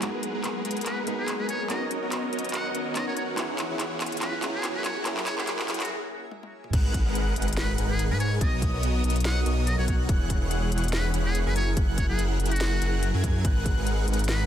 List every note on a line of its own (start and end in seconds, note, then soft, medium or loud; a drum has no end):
0.00 1.04 F#3 medium
0.00 0.32 G#3 medium
0.00 1.68 G#3 medium
0.00 1.05 B3 medium
0.00 1.05 D#4 medium
0.00 1.68 F#4 medium
0.00 0.32 G#4 medium
0.00 1.06 G#4 medium
0.00 0.32 A#4 medium
0.00 0.32 B4 medium
0.00 0.32 F#5 medium
0.00 3.34 A#5 medium
0.00 clap soft
0.00 closed hi-hat medium
0.00 riser medium
0.23 closed hi-hat medium
0.35 0.63 G#3 medium
0.35 0.63 G#4 medium
0.35 0.63 A#4 medium
0.35 0.63 B4 medium
0.35 0.63 F#5 medium
0.44 clap soft
0.44 closed hi-hat medium
0.65 1.05 G#3 medium
0.65 1.05 G#4 medium
0.65 1.05 A#4 medium
0.65 1.05 B4 medium
0.65 1.05 F#5 medium
0.65 closed hi-hat soft
0.71 closed hi-hat medium
0.77 closed hi-hat soft
0.81 closed hi-hat medium
0.86 1.01 B4 medium
0.86 clap soft
0.86 closed hi-hat medium
1.06 1.13 F#3 medium
1.06 1.37 G#3 medium
1.06 1.13 A#3 medium
1.06 1.13 B3 medium
1.06 1.13 D#4 medium
1.06 1.37 G#4 medium
1.06 1.14 G#4 medium
1.06 1.37 A#4 medium
1.06 1.37 B4 medium
1.06 1.37 F#5 loud
1.06 closed hi-hat medium
1.19 1.32 G#4 medium
1.28 clap medium
1.28 closed hi-hat medium
1.39 1.68 G#3 medium
1.39 1.68 G#4 medium
1.39 1.68 A#4 medium
1.39 1.68 B4 medium
1.39 1.47 B4 medium
1.39 1.68 G#5 loud
1.49 1.64 C#5 medium
1.49 closed hi-hat medium
1.68 3.36 D#3 medium
1.68 2.92 F#3 medium
1.68 2.93 B3 medium
1.68 2.00 B3 medium
1.68 3.36 B3 medium
1.68 4.81 C#4 medium
1.68 2.93 C#4 medium
1.68 2.94 D#4 medium
1.68 2.00 F#4 medium
1.68 2.00 A#4 medium
1.68 2.94 A#4 loud
1.68 2.00 C#5 medium
1.68 2.00 D#5 loud
1.68 1.85 D#5 medium
1.68 clap medium
1.68 closed hi-hat medium
1.91 closed hi-hat medium
2.02 2.30 B3 medium
2.02 2.30 F#4 medium
2.02 2.30 A#4 medium
2.02 2.30 C#5 medium
2.02 2.30 D#5 medium
2.12 clap medium
2.12 closed hi-hat medium
2.33 2.72 B3 medium
2.33 2.72 F#4 medium
2.33 2.72 A#4 medium
2.33 2.72 C#5 medium
2.33 2.72 D#5 loud
2.33 closed hi-hat soft
2.39 closed hi-hat medium
2.44 closed hi-hat soft
2.49 closed hi-hat medium
2.54 2.69 F#5 medium
2.54 clap medium
2.54 closed hi-hat medium
2.75 3.05 B3 medium
2.75 3.05 F#4 medium
2.75 3.05 A#4 medium
2.75 3.05 C#5 medium
2.75 3.05 D#5 loud
2.75 closed hi-hat medium
2.95 3.34 F#3 medium
2.95 3.35 B3 medium
2.95 3.35 C#4 medium
2.95 3.36 D#4 medium
2.95 3.36 A#4 medium
2.95 3.05 D#5 medium
2.95 clap medium
2.95 closed hi-hat medium
3.07 3.35 B3 medium
3.07 3.35 F#4 medium
3.07 3.35 A#4 medium
3.07 3.35 C#5 medium
3.07 3.13 C#5 medium
3.07 3.35 F#5 medium
3.17 3.24 C#5 medium
3.17 closed hi-hat medium
3.36 3.68 E3 medium
3.36 4.39 F#3 medium
3.36 6.70 F#3 medium
3.36 4.40 B3 medium
3.36 4.40 C#4 medium
3.36 6.70 E4 medium
3.36 3.68 E4 medium
3.36 4.41 E4 medium
3.36 6.70 G#4 medium
3.36 3.67 G#4 medium
3.36 3.68 C#5 medium
3.36 3.67 F#5 loud
3.36 clap medium
3.36 closed hi-hat medium
3.40 4.41 G#4 medium
3.59 clap medium
3.59 closed hi-hat medium
3.70 3.98 E3 medium
3.70 3.98 E4 medium
3.70 3.98 G#4 medium
3.70 3.98 C#5 medium
3.70 3.98 F#5 medium
3.80 clap medium
3.80 closed hi-hat medium
4.00 4.40 E3 medium
4.00 4.40 E4 medium
4.00 4.40 G#4 medium
4.00 4.40 C#5 medium
4.00 4.40 F#5 loud
4.00 clap medium
4.00 closed hi-hat soft
4.06 closed hi-hat medium
4.12 closed hi-hat soft
4.17 closed hi-hat medium
4.21 4.37 B4 medium
4.21 clap medium
4.21 closed hi-hat medium
4.41 4.72 E3 medium
4.41 4.48 F#3 medium
4.41 4.48 B3 medium
4.41 4.49 C#4 medium
4.41 4.72 E4 medium
4.41 4.49 E4 medium
4.41 4.72 G#4 medium
4.41 4.49 G#4 medium
4.41 4.72 C#5 medium
4.41 4.72 F#5 loud
4.41 clap medium
4.41 closed hi-hat medium
4.54 4.68 G#4 medium
4.64 clap medium
4.64 closed hi-hat medium
4.75 5.03 F#3 medium
4.75 5.03 E4 medium
4.75 5.03 G#4 medium
4.75 5.03 A#4 medium
4.75 4.83 B4 medium
4.75 5.03 G#5 loud
4.84 6.71 A#3 medium
4.84 4.99 C#5 medium
4.84 clap medium
4.84 closed hi-hat medium
5.03 5.88 F#3 medium
5.03 5.35 F#3 medium
5.03 5.89 A#3 medium
5.03 5.89 C#4 medium
5.03 5.35 E4 medium
5.03 5.90 E4 medium
5.03 5.35 G#4 medium
5.03 5.90 G#4 loud
5.03 5.35 A#4 medium
5.03 5.35 F#5 loud
5.03 clap medium
5.03 closed hi-hat medium
5.17 clap medium
5.26 5.36 C#5 loud
5.26 clap loud
5.26 closed hi-hat medium
5.38 5.66 F#3 medium
5.38 5.66 E4 medium
5.38 5.52 G#4 medium
5.38 5.66 G#4 medium
5.38 5.66 A#4 medium
5.38 5.66 F#5 medium
5.38 clap medium
5.47 clap loud
5.47 closed hi-hat medium
5.59 clap medium
5.68 5.89 F#3 medium
5.68 5.89 E4 medium
5.68 5.89 G#4 medium
5.68 5.89 A#4 medium
5.68 5.89 F#5 loud
5.68 clap loud
5.68 closed hi-hat medium
5.74 closed hi-hat medium
5.80 5.89 F#4 medium
5.80 clap medium
5.80 closed hi-hat medium
5.85 closed hi-hat medium
6.31 high tom medium
6.43 high tom medium
6.64 mid tom medium
6.73 7.04 G#1 medium
6.73 7.03 G#3 medium
6.73 7.03 G#4 medium
6.73 7.03 A#4 medium
6.73 7.03 B4 medium
6.73 7.03 F#5 loud
6.73 7.03 F#6 loud
6.73 kick loud
6.73 closed hi-hat medium
6.73 crash loud
6.73 sub drop medium
6.94 kick medium
6.94 closed hi-hat medium
7.06 7.34 G#1 medium
7.06 7.34 G#3 medium
7.06 7.34 G#4 medium
7.06 7.34 A#4 medium
7.06 7.34 B4 medium
7.06 7.34 F#5 medium
7.06 7.34 F#6 medium
7.15 closed hi-hat medium
7.36 7.76 G#1 medium
7.36 7.76 G#3 medium
7.36 7.76 G#4 medium
7.36 7.76 A#4 medium
7.36 7.76 B4 medium
7.36 7.76 F#5 loud
7.36 7.76 F#6 loud
7.36 closed hi-hat medium
7.42 closed hi-hat medium
7.48 closed hi-hat medium
7.53 closed hi-hat medium
7.57 7.72 B4 medium
7.57 snare loud
7.57 closed hi-hat medium
7.78 8.12 G#1 loud
7.78 8.08 G#3 medium
7.78 8.08 G#4 medium
7.78 8.08 A#4 medium
7.78 8.08 B4 medium
7.78 8.08 F#5 medium
7.78 8.08 F#6 loud
7.78 closed hi-hat medium
7.90 8.03 G#4 medium
7.99 closed hi-hat medium
8.11 8.39 G#2 medium
8.11 8.39 G#3 medium
8.11 8.39 G#4 medium
8.11 8.39 A#4 medium
8.11 8.39 B4 medium
8.11 8.18 B4 medium
8.11 8.39 G#5 medium
8.11 8.39 G#6 loud
8.20 8.35 C#5 medium
8.20 closed hi-hat medium
8.41 8.71 B1 loud
8.41 8.71 B3 medium
8.41 8.71 F#4 medium
8.41 8.71 A#4 medium
8.41 8.71 C#5 medium
8.41 8.71 D#5 loud
8.41 8.56 D#5 medium
8.41 8.71 D#6 loud
8.41 kick loud
8.41 closed hi-hat medium
8.62 kick medium
8.62 closed hi-hat medium
8.74 9.02 B1 loud
8.74 9.02 B3 medium
8.74 9.02 F#4 medium
8.74 9.02 A#4 medium
8.74 9.02 C#5 medium
8.74 9.02 D#5 medium
8.74 9.02 D#6 medium
8.83 closed hi-hat medium
9.04 9.44 B1 medium
9.04 9.44 B3 medium
9.04 9.44 F#4 medium
9.04 9.44 A#4 medium
9.04 9.44 C#5 medium
9.04 9.44 D#5 loud
9.04 9.44 D#6 loud
9.04 closed hi-hat soft
9.10 closed hi-hat medium
9.16 closed hi-hat soft
9.20 closed hi-hat medium
9.25 9.40 F#5 loud
9.25 snare loud
9.25 closed hi-hat medium
9.46 9.76 B1 loud
9.46 9.76 B3 medium
9.46 9.76 F#4 medium
9.46 9.76 A#4 medium
9.46 9.76 C#5 medium
9.46 9.76 D#5 loud
9.46 9.76 D#6 loud
9.46 closed hi-hat medium
9.67 9.76 D#5 medium
9.67 closed hi-hat medium
9.79 10.07 B1 medium
9.79 10.07 B3 medium
9.79 10.07 F#4 medium
9.79 10.07 A#4 medium
9.79 9.85 C#5 medium
9.79 10.07 C#5 medium
9.79 10.07 F#5 medium
9.79 10.07 F#6 medium
9.88 9.96 C#5 medium
9.88 kick medium
9.88 closed hi-hat medium
10.09 10.39 E1 loud
10.09 10.39 E3 medium
10.09 10.39 E4 medium
10.09 10.39 G#4 medium
10.09 10.39 C#5 medium
10.09 10.39 F#5 loud
10.09 10.39 F#6 loud
10.09 kick loud
10.09 closed hi-hat medium
10.30 kick medium
10.30 closed hi-hat medium
10.42 10.70 E1 loud
10.42 10.70 E3 medium
10.42 10.70 E4 medium
10.42 10.70 G#4 medium
10.42 10.70 C#5 medium
10.42 10.70 F#5 medium
10.42 10.70 F#6 medium
10.51 closed hi-hat medium
10.72 11.12 E1 medium
10.72 11.12 E3 medium
10.72 11.12 E4 medium
10.72 11.12 G#4 medium
10.72 11.12 C#5 medium
10.72 11.12 F#5 loud
10.72 11.12 F#6 loud
10.72 closed hi-hat soft
10.78 closed hi-hat medium
10.84 closed hi-hat soft
10.88 closed hi-hat medium
10.93 11.08 B4 medium
10.93 snare loud
10.93 closed hi-hat medium
11.14 11.44 E1 loud
11.14 11.44 E3 medium
11.14 11.44 E4 medium
11.14 11.44 G#4 medium
11.14 11.44 C#5 medium
11.14 11.44 F#5 loud
11.14 11.44 F#6 loud
11.14 closed hi-hat medium
11.26 11.39 G#4 loud
11.35 closed hi-hat medium
11.46 11.75 F#1 medium
11.46 11.75 F#3 medium
11.46 11.75 E4 medium
11.46 11.75 G#4 medium
11.46 11.75 A#4 medium
11.46 11.54 B4 medium
11.46 11.75 G#5 loud
11.46 11.75 G#6 loud
11.56 11.71 C#5 medium
11.56 closed hi-hat medium
11.77 12.07 F#1 loud
11.77 12.07 F#3 medium
11.77 12.07 E4 medium
11.77 12.07 G#4 medium
11.77 12.07 A#4 medium
11.77 12.07 F#5 loud
11.77 12.07 F#6 loud
11.77 kick loud
11.77 closed hi-hat medium
11.98 12.07 C#5 medium
11.98 kick medium
11.98 closed hi-hat medium
12.09 12.38 F#1 loud
12.09 12.38 F#3 medium
12.09 12.38 E4 medium
12.09 12.23 G#4 loud
12.09 12.38 G#4 medium
12.09 12.38 A#4 medium
12.09 12.38 F#5 medium
12.09 12.38 F#6 loud
12.19 closed hi-hat medium
12.40 12.80 F#1 medium
12.40 12.79 F#3 medium
12.40 12.80 E4 medium
12.40 12.80 G#4 medium
12.40 12.80 A#4 medium
12.40 12.80 F#5 medium
12.40 12.79 F#6 loud
12.40 closed hi-hat soft
12.46 closed hi-hat medium
12.51 13.10 F#4 medium
12.51 closed hi-hat soft
12.56 closed hi-hat medium
12.61 snare loud
12.61 closed hi-hat medium
12.82 13.12 F#1 loud
12.82 13.12 F#3 medium
12.82 13.12 E4 medium
12.82 13.12 G#4 medium
12.82 13.12 A#4 medium
12.82 13.12 F#5 loud
12.82 13.12 F#6 loud
12.82 closed hi-hat medium
13.03 closed hi-hat medium
13.14 13.46 F#2 medium
13.14 13.42 F#3 medium
13.14 13.42 E4 medium
13.14 13.42 G#4 medium
13.14 13.42 A#4 medium
13.14 13.42 G#5 loud
13.14 13.42 G#6 loud
13.24 kick medium
13.24 closed hi-hat medium
13.45 13.75 G#1 loud
13.45 13.75 G#3 medium
13.45 13.75 G#4 medium
13.45 13.74 A#4 medium
13.45 13.75 B4 medium
13.45 13.75 F#5 loud
13.45 13.75 F#6 loud
13.45 kick loud
13.45 closed hi-hat medium
13.66 kick medium
13.66 closed hi-hat medium
13.77 14.06 G#1 loud
13.77 14.05 G#3 medium
13.77 14.05 G#4 medium
13.77 14.05 A#4 medium
13.77 14.05 B4 medium
13.77 14.05 F#5 medium
13.77 14.05 F#6 medium
13.87 closed hi-hat medium
14.07 14.46 G#1 medium
14.07 14.46 G#3 medium
14.07 14.46 G#4 medium
14.07 14.46 A#4 medium
14.07 14.46 B4 medium
14.07 14.46 F#5 loud
14.07 14.46 F#6 loud
14.07 closed hi-hat soft
14.13 closed hi-hat medium
14.19 closed hi-hat soft
14.24 closed hi-hat medium
14.29 14.44 B4 medium
14.29 snare loud
14.29 closed hi-hat medium